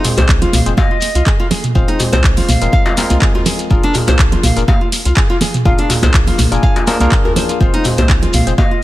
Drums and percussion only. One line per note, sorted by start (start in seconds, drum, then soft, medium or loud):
0.04 mid tom medium
0.04 open hi-hat medium
0.04 djembe tone medium
0.04 shekere medium
0.17 closed hi-hat medium
0.17 muted conga soft
0.17 djembe slap medium
0.17 djembe tone medium
0.17 high conga medium
0.17 djembe bass medium
0.17 shekere medium
0.28 kick loud
0.28 clap loud
0.28 shekere soft
0.42 closed hi-hat soft
0.42 muted conga medium
0.42 low conga medium
0.53 mid tom medium
0.53 open hi-hat loud
0.53 high conga medium
0.53 djembe tone medium
0.53 shekere loud
0.66 closed hi-hat medium
0.66 muted conga soft
0.66 shekere medium
0.77 kick loud
0.77 djembe slap loud
0.77 high conga loud
0.77 djembe tone medium
0.77 shekere soft
1.01 open hi-hat medium
1.01 muted conga medium
1.01 shekere medium
1.15 closed hi-hat medium
1.15 shekere medium
1.26 kick loud
1.26 clap loud
1.26 muted conga soft
1.26 shekere soft
1.51 open hi-hat medium
1.51 muted conga medium
1.51 high conga medium
1.51 low conga loud
1.51 shekere medium
1.64 closed hi-hat medium
1.64 mid tom medium
1.64 shekere soft
1.75 kick loud
1.75 shekere soft
1.88 closed hi-hat soft
1.88 muted conga medium
1.99 mid tom medium
1.99 open hi-hat medium
1.99 djembe tone medium
1.99 shekere medium
2.13 closed hi-hat medium
2.13 muted conga soft
2.13 djembe slap medium
2.13 djembe tone medium
2.13 high conga loud
2.13 djembe bass medium
2.13 shekere medium
2.24 kick loud
2.24 clap loud
2.24 shekere soft
2.37 open hi-hat medium
2.37 muted conga medium
2.37 low conga medium
2.49 mid tom medium
2.49 open hi-hat medium
2.49 high conga medium
2.49 shekere loud
2.61 closed hi-hat medium
2.61 muted conga soft
2.61 shekere medium
2.72 kick loud
2.72 shekere soft
2.86 djembe slap loud
2.97 open hi-hat medium
2.97 muted conga soft
2.97 djembe slap medium
2.97 high conga medium
2.97 shekere loud
3.10 closed hi-hat medium
3.10 high conga loud
3.10 shekere soft
3.22 kick loud
3.22 clap loud
3.22 muted conga soft
3.22 shekere soft
3.35 djembe bass medium
3.46 open hi-hat medium
3.46 muted conga medium
3.46 low conga loud
3.46 shekere loud
3.59 closed hi-hat medium
3.59 shekere medium
3.70 kick loud
3.70 shekere soft
3.83 closed hi-hat soft
3.83 muted conga medium
3.94 mid tom medium
3.94 open hi-hat medium
3.94 djembe tone medium
3.94 shekere medium
4.08 closed hi-hat medium
4.08 djembe slap medium
4.08 muted conga soft
4.08 djembe tone medium
4.08 high conga loud
4.08 djembe bass medium
4.08 shekere medium
4.19 kick loud
4.19 clap loud
4.19 shekere soft
4.32 closed hi-hat soft
4.32 muted conga medium
4.32 low conga loud
4.43 mid tom medium
4.43 open hi-hat medium
4.43 high conga loud
4.43 djembe tone medium
4.43 shekere loud
4.56 closed hi-hat medium
4.56 muted conga soft
4.56 shekere medium
4.68 kick loud
4.68 djembe slap loud
4.68 high conga loud
4.68 djembe tone medium
4.68 shekere soft
4.92 open hi-hat medium
4.92 muted conga soft
4.92 shekere loud
5.05 closed hi-hat medium
5.05 shekere medium
5.16 kick loud
5.16 clap loud
5.16 muted conga soft
5.16 shekere soft
5.41 open hi-hat medium
5.41 muted conga soft
5.41 high conga medium
5.41 low conga loud
5.41 shekere medium
5.54 closed hi-hat medium
5.54 mid tom medium
5.54 shekere medium
5.65 kick loud
5.65 shekere soft
5.78 closed hi-hat soft
5.78 muted conga medium
5.90 mid tom medium
5.90 open hi-hat medium
5.90 djembe tone loud
5.90 shekere loud
6.02 closed hi-hat medium
6.02 muted conga soft
6.02 djembe slap medium
6.02 high conga medium
6.02 djembe tone medium
6.02 djembe bass loud
6.02 shekere medium
6.14 kick loud
6.14 clap loud
6.14 shekere soft
6.27 open hi-hat medium
6.27 muted conga medium
6.27 low conga medium
6.39 mid tom medium
6.39 open hi-hat medium
6.39 high conga loud
6.39 shekere loud
6.52 closed hi-hat medium
6.52 muted conga soft
6.52 shekere medium
6.63 kick loud
6.63 shekere soft
6.76 closed hi-hat soft
6.76 djembe slap medium
6.87 open hi-hat medium
6.87 muted conga medium
6.87 djembe slap medium
6.87 high conga loud
6.87 shekere medium
7.00 closed hi-hat medium
7.00 high conga loud
7.00 shekere soft
7.12 kick loud
7.12 clap loud
7.12 shekere soft
7.25 djembe bass medium
7.36 open hi-hat medium
7.36 muted conga soft
7.36 low conga loud
7.36 shekere medium
7.49 closed hi-hat medium
7.49 shekere medium
7.61 kick loud
7.61 shekere soft
7.74 closed hi-hat soft
7.74 muted conga soft
7.84 mid tom medium
7.84 open hi-hat medium
7.84 djembe tone medium
7.84 shekere medium
7.97 closed hi-hat medium
7.97 muted conga soft
7.97 djembe slap medium
7.97 djembe tone medium
7.97 high conga medium
7.97 djembe bass medium
7.97 shekere medium
8.09 kick loud
8.09 clap loud
8.09 shekere soft
8.22 closed hi-hat soft
8.22 muted conga soft
8.22 low conga medium
8.33 mid tom medium
8.33 open hi-hat medium
8.33 djembe tone medium
8.33 high conga medium
8.33 shekere loud
8.47 closed hi-hat medium
8.47 muted conga soft
8.47 shekere medium
8.58 kick loud
8.58 djembe slap loud
8.58 high conga loud
8.58 djembe tone medium
8.58 shekere soft